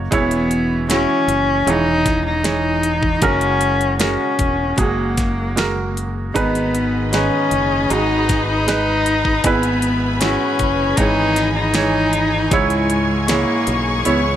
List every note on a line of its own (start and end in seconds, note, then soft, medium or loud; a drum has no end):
0.00 0.11 F#3 medium
0.00 0.12 A#3 medium
0.00 0.14 A#3 medium
0.00 0.13 C#4 medium
0.00 0.13 F#4 medium
0.00 0.14 F#4 medium
0.00 0.13 C#5 medium
0.00 0.14 D#5 medium
0.11 1.05 E1 loud
0.11 0.88 E3 medium
0.11 1.24 E3 medium
0.11 0.85 G#3 medium
0.11 0.87 B3 loud
0.11 0.89 C#4 medium
0.11 0.86 E4 medium
0.11 0.89 E4 medium
0.11 0.91 G#4 medium
0.11 0.86 C#5 loud
0.11 kick loud
0.11 closed hi-hat medium
0.31 closed hi-hat medium
0.51 closed hi-hat medium
0.88 1.64 E3 medium
0.88 1.63 G#3 medium
0.88 1.67 C#4 medium
0.88 1.71 C#4 medium
0.88 1.63 E4 medium
0.88 1.67 E4 medium
0.88 1.63 F#4 medium
0.88 1.70 G#4 medium
0.88 snare loud
0.88 closed hi-hat loud
1.28 1.64 F#1 medium
1.28 closed hi-hat medium
1.65 3.18 E1 loud
1.65 3.21 E3 soft
1.65 2.40 E3 medium
1.65 2.40 G#3 medium
1.65 3.22 C#4 soft
1.65 2.41 C#5 medium
1.65 closed hi-hat medium
1.70 2.26 D#4 loud
1.70 3.23 G#4 medium
2.06 kick medium
2.06 snare soft
2.06 closed hi-hat medium
2.26 3.24 D#4 medium
2.44 3.18 E3 medium
2.44 3.18 G#3 medium
2.44 3.19 C#5 medium
2.44 snare loud
2.44 closed hi-hat medium
2.83 closed hi-hat medium
3.03 kick medium
3.21 4.16 F#1 medium
3.21 4.00 F#2 medium
3.21 4.00 C#3 medium
3.21 4.35 C#3 medium
3.21 3.96 G#3 medium
3.21 3.99 G#3 medium
3.21 3.99 A#3 medium
3.21 3.99 C#4 medium
3.21 4.00 C#4 loud
3.21 3.96 F#4 medium
3.21 4.00 F#4 medium
3.21 3.97 A#4 loud
3.21 kick medium
3.21 closed hi-hat medium
3.41 closed hi-hat soft
3.61 closed hi-hat medium
3.81 closed hi-hat soft
3.99 4.75 G#3 medium
3.99 4.74 G#3 medium
3.99 4.77 A#3 medium
3.99 4.80 C#4 medium
3.99 4.79 C#4 medium
3.99 4.74 F#4 medium
3.99 4.79 F#4 medium
3.99 4.74 A#4 medium
3.99 snare loud
3.99 closed hi-hat medium
4.39 4.76 E1 medium
4.39 kick medium
4.39 closed hi-hat medium
4.76 6.31 F#1 medium
4.76 6.35 G#3 soft
4.76 5.52 G#3 medium
4.76 6.35 A#3 medium
4.76 5.97 A#3 medium
4.76 6.36 C#4 soft
4.76 5.53 F#4 medium
4.76 5.53 G#4 medium
4.76 kick medium
4.76 closed hi-hat medium
4.82 6.36 F#4 medium
5.17 kick medium
5.17 snare soft
5.17 closed hi-hat medium
5.56 6.31 G#3 medium
5.56 6.32 F#4 medium
5.56 6.32 A#4 medium
5.56 snare loud
5.56 closed hi-hat medium
5.97 closed hi-hat medium
6.34 7.29 G#1 medium
6.34 7.13 G#2 medium
6.34 7.48 G#2 medium
6.34 7.48 D#3 medium
6.34 7.13 D#3 medium
6.34 7.09 G#3 medium
6.34 7.12 G#3 medium
6.34 7.09 B3 loud
6.34 7.13 B3 medium
6.34 7.09 D#4 medium
6.34 7.12 D#4 medium
6.34 9.41 G#4 medium
6.34 7.14 G#4 medium
6.34 12.47 B4 medium
6.34 7.10 B4 medium
6.34 9.41 D#5 medium
6.34 12.47 B5 medium
6.34 kick medium
6.34 closed hi-hat medium
6.55 closed hi-hat soft
6.75 closed hi-hat medium
7.12 7.89 G#3 medium
7.12 7.87 G#3 medium
7.12 7.91 B3 medium
7.12 7.92 C#4 medium
7.12 7.87 D#4 medium
7.12 7.91 D#4 medium
7.12 7.94 G#4 medium
7.12 7.87 B4 medium
7.12 snare loud
7.12 closed hi-hat medium
7.51 7.88 F#1 medium
7.51 closed hi-hat medium
7.89 9.41 G#1 medium
7.89 9.44 G#3 medium
7.89 8.64 G#3 medium
7.89 9.44 B3 medium
7.89 8.64 D#4 medium
7.89 8.48 D#4 medium
7.89 8.64 F#4 medium
7.89 closed hi-hat medium
7.93 9.45 D#4 medium
7.93 9.45 G#4 soft
8.29 kick medium
8.29 snare soft
8.29 closed hi-hat medium
8.49 9.45 D#4 medium
8.67 9.40 G#3 medium
8.67 9.41 D#4 medium
8.67 9.41 B4 medium
8.67 snare loud
8.67 closed hi-hat medium
9.06 closed hi-hat medium
9.25 kick medium
9.44 10.36 G#1 medium
9.44 10.56 G#2 medium
9.44 10.21 G#3 medium
9.44 10.18 G#3 medium
9.44 10.22 B3 loud
9.44 10.21 B3 medium
9.44 10.22 E4 medium
9.44 10.18 E4 medium
9.44 12.49 G#4 medium
9.44 10.23 G#4 medium
9.44 10.19 B4 medium
9.44 14.36 G#5 medium
9.44 kick loud
9.44 closed hi-hat medium
9.63 closed hi-hat medium
9.82 closed hi-hat medium
10.20 10.94 G#3 medium
10.20 10.97 G#3 medium
10.20 10.98 B3 medium
10.20 10.98 C#4 medium
10.20 10.95 E4 medium
10.20 12.52 E4 medium
10.20 10.95 F#4 medium
10.20 11.03 G#4 medium
10.20 snare loud
10.20 closed hi-hat medium
10.59 10.95 F#1 medium
10.59 kick medium
10.59 closed hi-hat medium
10.96 12.48 G#1 medium
10.96 11.71 E3 medium
10.96 12.52 G#3 soft
10.96 11.71 G#3 medium
10.96 12.52 B3 medium
10.96 11.54 D#4 loud
10.96 11.71 C#5 medium
10.96 kick medium
10.96 closed hi-hat medium
11.03 12.53 G#4 medium
11.36 snare soft
11.36 closed hi-hat medium
11.55 12.52 D#4 loud
11.74 12.48 E3 medium
11.74 12.48 G#3 medium
11.74 12.48 C#5 medium
11.74 snare loud
11.74 closed hi-hat medium
12.13 closed hi-hat medium
12.50 13.44 C#2 medium
12.50 13.64 G#2 medium
12.50 13.29 C#3 medium
12.50 13.27 E3 medium
12.50 13.30 G#3 loud
12.50 13.25 G#3 medium
12.50 13.29 C#4 medium
12.50 13.26 E4 medium
12.50 13.29 E4 medium
12.50 14.36 G#4 medium
12.50 13.29 G#4 medium
12.50 14.36 C#5 medium
12.50 13.26 C#5 loud
12.50 14.36 C#6 medium
12.50 kick loud
12.50 closed hi-hat medium
12.70 closed hi-hat soft
12.90 closed hi-hat medium
13.28 14.03 E3 medium
13.28 14.02 G#3 medium
13.28 14.04 A#3 medium
13.28 14.06 C#4 medium
13.28 14.02 E4 medium
13.28 14.07 E4 medium
13.28 14.07 G#4 medium
13.28 14.02 C#5 medium
13.28 snare loud
13.28 closed hi-hat loud
13.67 14.03 B1 medium
13.67 closed hi-hat medium
14.04 14.36 C#2 medium
14.04 14.36 E3 medium
14.04 14.36 G#3 medium
14.04 14.22 B3 medium
14.04 14.36 C#4 medium
14.04 14.36 E4 medium
14.04 14.36 C#5 medium
14.04 closed hi-hat medium
14.09 14.36 E4 medium
14.09 14.36 G#4 medium